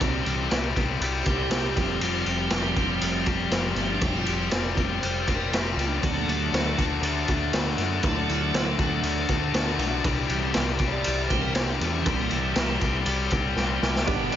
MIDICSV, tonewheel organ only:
0, 0, Header, 1, 2, 480
1, 0, Start_track
1, 0, Tempo, 502092
1, 12, Time_signature, 4, 2, 24, 8
1, 13729, End_track
2, 0, Start_track
2, 0, Title_t, "Tonewheel organ"
2, 0, Program_c, 0, 16
2, 0, Note_on_c, 0, 60, 92
2, 219, Note_off_c, 0, 60, 0
2, 221, Note_on_c, 0, 52, 52
2, 224, Note_on_c, 0, 55, 51
2, 236, Note_on_c, 0, 60, 57
2, 554, Note_off_c, 0, 52, 0
2, 555, Note_off_c, 0, 55, 0
2, 562, Note_off_c, 0, 60, 0
2, 1174, Note_on_c, 0, 66, 67
2, 1204, Note_off_c, 0, 66, 0
2, 1224, Note_on_c, 0, 67, 110
2, 1696, Note_on_c, 0, 53, 56
2, 1705, Note_on_c, 0, 55, 47
2, 1713, Note_on_c, 0, 60, 60
2, 1914, Note_off_c, 0, 67, 0
2, 1938, Note_on_c, 0, 65, 85
2, 2166, Note_off_c, 0, 65, 0
2, 2183, Note_off_c, 0, 60, 0
2, 2194, Note_on_c, 0, 60, 85
2, 2414, Note_off_c, 0, 60, 0
2, 2455, Note_on_c, 0, 60, 93
2, 3362, Note_off_c, 0, 60, 0
2, 3572, Note_off_c, 0, 53, 0
2, 3576, Note_off_c, 0, 55, 0
2, 3584, Note_on_c, 0, 59, 62
2, 3612, Note_off_c, 0, 59, 0
2, 3613, Note_on_c, 0, 53, 52
2, 3613, Note_on_c, 0, 60, 81
2, 3618, Note_on_c, 0, 55, 48
2, 3734, Note_off_c, 0, 60, 0
2, 3761, Note_on_c, 0, 62, 90
2, 3977, Note_off_c, 0, 62, 0
2, 3987, Note_on_c, 0, 65, 87
2, 4048, Note_on_c, 0, 64, 63
2, 4068, Note_off_c, 0, 65, 0
2, 4079, Note_off_c, 0, 64, 0
2, 4079, Note_on_c, 0, 65, 82
2, 4294, Note_off_c, 0, 53, 0
2, 4296, Note_off_c, 0, 55, 0
2, 4545, Note_on_c, 0, 53, 42
2, 4548, Note_off_c, 0, 65, 0
2, 4550, Note_on_c, 0, 55, 43
2, 4552, Note_on_c, 0, 60, 51
2, 4770, Note_off_c, 0, 53, 0
2, 4773, Note_off_c, 0, 55, 0
2, 4775, Note_off_c, 0, 60, 0
2, 4783, Note_on_c, 0, 72, 92
2, 5104, Note_off_c, 0, 72, 0
2, 5121, Note_on_c, 0, 70, 81
2, 5279, Note_off_c, 0, 70, 0
2, 5283, Note_on_c, 0, 67, 76
2, 5440, Note_off_c, 0, 67, 0
2, 5478, Note_on_c, 0, 65, 80
2, 5618, Note_off_c, 0, 65, 0
2, 5618, Note_on_c, 0, 62, 84
2, 5740, Note_on_c, 0, 54, 49
2, 5748, Note_off_c, 0, 62, 0
2, 5757, Note_on_c, 0, 57, 50
2, 5760, Note_on_c, 0, 62, 63
2, 5771, Note_on_c, 0, 60, 82
2, 5924, Note_off_c, 0, 60, 0
2, 5937, Note_on_c, 0, 58, 84
2, 6072, Note_off_c, 0, 57, 0
2, 6075, Note_off_c, 0, 54, 0
2, 6084, Note_on_c, 0, 57, 83
2, 6087, Note_off_c, 0, 58, 0
2, 6087, Note_on_c, 0, 54, 78
2, 6533, Note_off_c, 0, 54, 0
2, 6551, Note_off_c, 0, 57, 0
2, 7646, Note_off_c, 0, 62, 0
2, 7672, Note_on_c, 0, 54, 48
2, 7680, Note_on_c, 0, 57, 47
2, 7697, Note_on_c, 0, 62, 64
2, 7705, Note_on_c, 0, 64, 97
2, 7809, Note_off_c, 0, 64, 0
2, 7815, Note_off_c, 0, 62, 0
2, 7827, Note_on_c, 0, 62, 91
2, 7930, Note_off_c, 0, 62, 0
2, 7938, Note_on_c, 0, 64, 84
2, 8045, Note_off_c, 0, 64, 0
2, 8061, Note_on_c, 0, 62, 80
2, 8167, Note_off_c, 0, 62, 0
2, 8198, Note_on_c, 0, 64, 92
2, 8296, Note_off_c, 0, 64, 0
2, 8324, Note_on_c, 0, 62, 93
2, 8364, Note_off_c, 0, 54, 0
2, 8368, Note_off_c, 0, 57, 0
2, 8418, Note_on_c, 0, 54, 48
2, 8419, Note_off_c, 0, 62, 0
2, 8433, Note_on_c, 0, 57, 45
2, 8441, Note_on_c, 0, 62, 98
2, 8630, Note_off_c, 0, 54, 0
2, 8638, Note_off_c, 0, 57, 0
2, 9832, Note_off_c, 0, 62, 0
2, 9858, Note_on_c, 0, 52, 58
2, 9873, Note_on_c, 0, 55, 48
2, 9882, Note_on_c, 0, 60, 62
2, 10175, Note_off_c, 0, 52, 0
2, 10182, Note_off_c, 0, 55, 0
2, 10187, Note_off_c, 0, 60, 0
2, 10394, Note_on_c, 0, 73, 66
2, 10421, Note_off_c, 0, 73, 0
2, 10439, Note_on_c, 0, 74, 100
2, 10737, Note_off_c, 0, 74, 0
2, 10773, Note_on_c, 0, 72, 75
2, 10808, Note_on_c, 0, 52, 50
2, 10810, Note_on_c, 0, 55, 43
2, 10810, Note_on_c, 0, 60, 55
2, 10909, Note_off_c, 0, 72, 0
2, 10914, Note_on_c, 0, 70, 95
2, 11026, Note_off_c, 0, 52, 0
2, 11028, Note_off_c, 0, 55, 0
2, 11028, Note_off_c, 0, 60, 0
2, 11058, Note_on_c, 0, 67, 80
2, 11059, Note_off_c, 0, 70, 0
2, 11198, Note_on_c, 0, 62, 90
2, 11211, Note_off_c, 0, 67, 0
2, 11361, Note_off_c, 0, 62, 0
2, 11380, Note_on_c, 0, 61, 75
2, 11489, Note_on_c, 0, 52, 55
2, 11502, Note_on_c, 0, 55, 50
2, 11505, Note_on_c, 0, 60, 88
2, 11533, Note_off_c, 0, 61, 0
2, 11670, Note_on_c, 0, 58, 89
2, 11677, Note_off_c, 0, 60, 0
2, 11835, Note_off_c, 0, 55, 0
2, 11837, Note_off_c, 0, 58, 0
2, 11846, Note_on_c, 0, 55, 91
2, 12006, Note_off_c, 0, 55, 0
2, 12038, Note_on_c, 0, 55, 101
2, 12196, Note_off_c, 0, 52, 0
2, 13431, Note_off_c, 0, 55, 0
2, 13452, Note_on_c, 0, 55, 47
2, 13456, Note_on_c, 0, 50, 54
2, 13465, Note_on_c, 0, 59, 60
2, 13729, Note_off_c, 0, 50, 0
2, 13729, Note_off_c, 0, 55, 0
2, 13729, Note_off_c, 0, 59, 0
2, 13729, End_track
0, 0, End_of_file